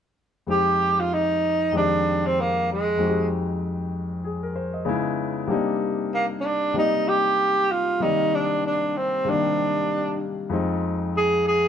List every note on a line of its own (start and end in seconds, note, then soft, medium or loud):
0.47 1.63 F2 medium
0.47 1.63 G#3 medium
0.47 1.64 C4 soft
0.47 1.65 D#4 medium
0.47 1.02 G4 medium
0.47 1.65 G4 medium
1.00 1.15 F4 medium
1.14 1.76 D#4 medium
1.72 2.88 F2 medium
1.72 2.90 D#3 medium
1.72 2.89 G#3 medium
1.72 2.90 C4 medium
1.72 2.90 G4 medium
1.77 2.28 D4 medium
2.27 2.42 C4 medium
2.41 2.70 A#3 medium
2.72 3.29 G#3 medium
2.97 4.14 F2 medium
2.97 4.14 G#3 medium
2.97 4.15 C4 medium
2.97 4.15 D#4 medium
2.97 3.08 F#4 medium
3.07 4.19 G4 medium
4.24 4.42 G#4 medium
4.43 4.56 A#4 medium
4.56 4.73 C5 medium
4.74 5.04 D#5 medium
4.85 5.44 C#3 medium
4.85 5.44 G#3 medium
4.85 5.45 B3 medium
4.85 5.45 D#4 medium
4.85 5.46 E4 medium
5.47 6.64 C3 medium
5.47 6.65 G3 medium
5.47 6.65 A#3 medium
5.47 6.66 D4 medium
5.47 6.66 D#4 medium
6.14 6.26 A#3 medium
6.40 6.48 C#4 medium
6.46 6.77 D4 medium
6.74 7.90 C3 medium
6.74 7.90 G3 medium
6.74 7.91 A#3 medium
6.74 7.92 D#4 medium
6.74 7.91 D5 medium
6.78 7.10 D#4 medium
7.09 7.73 G4 medium
7.71 8.04 F4 medium
8.00 9.15 C3 medium
8.00 9.17 D#3 medium
8.00 9.16 G3 medium
8.00 9.16 A#3 medium
8.00 8.36 D#4 medium
8.00 9.17 D5 medium
8.35 8.65 D4 medium
8.66 8.99 D4 medium
8.97 9.31 C4 medium
9.25 10.40 C3 medium
9.25 10.42 D#3 medium
9.25 10.41 G3 medium
9.25 10.41 A#3 medium
9.25 10.42 D4 medium
9.30 10.22 D4 medium
10.49 11.65 F2 medium
10.49 11.65 F3 medium
10.49 11.66 G#3 medium
10.49 11.67 C4 medium
10.49 11.67 D#4 medium
11.17 11.45 G#4 medium
11.48 11.68 G#4 medium